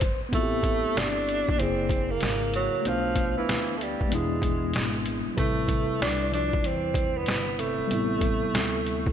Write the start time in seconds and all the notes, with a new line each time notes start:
Already playing: G1 C5
0.01 kick, closed hi-hat
0.21 muted upright bass stroke
0.29 A1 B3 C4, kick
0.33 A3 E4 F4, closed hi-hat
0.43 G4
0.63 kick, closed hi-hat
0.84 muted upright bass stroke
0.96 G1 D4, snare, closed hi-hat
1.29 closed hi-hat
1.49 muted upright bass stroke, kick
1.56 F#1 C#3 A#3, closed hi-hat
1.60 C4 E4 G#4
1.89 kick, closed hi-hat
2.11 A#3
2.21 G#1, snare, closed hi-hat
2.54 F#3, closed hi-hat
2.74 muted upright bass stroke
2.82 B1 A3 B3, closed hi-hat
2.87 F3 D4 F5
3.16 kick, closed hi-hat
3.37 E3, muted upright bass stroke
3.48 D2, snare, closed hi-hat
3.78 A3, closed hi-hat
3.83 G3
4.01 muted upright bass stroke, kick
4.08 G#3 B3
4.12 E2 B2 G#3 D4 E4, closed hi-hat
4.42 kick, closed hi-hat
4.74 G#1, snare, closed hi-hat
5.06 closed hi-hat
5.27 muted upright bass stroke
5.34 A1 G3 B4, kick, closed hi-hat
5.38 C3 A3 E4
5.68 kick, closed hi-hat
5.89 muted upright bass stroke
6.01 C2 G3 D4, snare, closed hi-hat
6.32 F3 D4, closed hi-hat
6.53 muted upright bass stroke, kick
6.64 E2 E3 C4, closed hi-hat
6.94 kick, closed hi-hat
7.15 D3 B3
7.26 G1, snare, closed hi-hat
7.59 C3 A3, closed hi-hat
7.79 muted upright bass stroke
7.87 A1 G3 B3, closed hi-hat
7.92 C4 E4
8.21 kick, closed hi-hat
8.42 muted upright bass stroke
8.54 D2, snare, closed hi-hat
8.87 closed hi-hat
9.06 muted upright bass stroke, kick